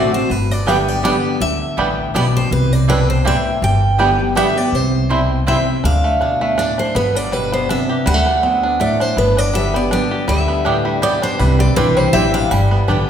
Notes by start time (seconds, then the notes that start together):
Already playing: A1 D3 A3 C4 F#4 D5
0.12 C4 F#4 C5
0.30 G1 G2 B4
0.51 D5
0.66 D3 G3 B3 D4 G4 D5 E5 G5
0.88 D5
1.03 D3 G3 B3 D4 G4 D5 G5
1.40 D2 D3 E5
1.77 A1 A2 G3 B3 D4 G4 D5 G5
2.14 B1 B2 G3 B3 D4 G4 D5 G5
2.37 C5
2.51 C2 C3 B4
2.73 D5
2.88 B2 G3 C4 D4 E4 B4 D5 G5
3.10 C5
3.25 A2 G3 C4 D4 E4 D5 E5 G5
3.62 G1 G2 G5
3.98 D3 G3 B3 D4 G4 D5 G5
4.18 B3 G4
4.35 D3 G3 B3 D4 G4 D5 E5 G5
4.56 B3 G4 D5
4.72 C2 C3 C5
5.09 B2 G3 C4 E4 C5 G5
5.47 C3 G3 C4 E4 C5 E5 G5
5.84 D2 D3 D4 F5
6.04 A3
6.21 B2 D4
6.41 A3
6.58 A2 D4 D5
6.78 D4 C5
6.95 G1 G2 B3 B4
7.15 D4 D5
7.32 B2 G3 B4
7.52 B3 C5
7.69 C3 D4 E5
7.89 G4
8.06 D2 D3 G3 F#5
8.14 A3
8.26 D4
8.43 B3 C4
8.63 D4
8.80 A2 A3 D5
9.00 D4 C5
9.17 G1 G2 B3 B4
9.37 D4 D5
9.53 D3 G3 B3 G4 E5
9.74 B3 G4 D5
9.91 D3 G3 B3 D4 G4 D5
10.11 G4
10.28 D2 D3 G3 E5
10.48 B3
10.65 A2 B3 D4 G4 D5 G5
10.85 G3
11.02 B2 B3 G4 D5 G5
11.22 D4 C5
11.39 C2 C3 G3 B4
11.59 C4 D5
11.76 B1 E3 G3 C4 D4 E4 B4 D5 G5
11.97 G3 C5
12.13 A1 E3 G3 C4 D4 E4 D5 E5 G5
12.34 D4 F5
12.51 G1 G2 G3 G5
12.71 B3
12.88 A1 D3 G3 B3 D4 G4 D5 G5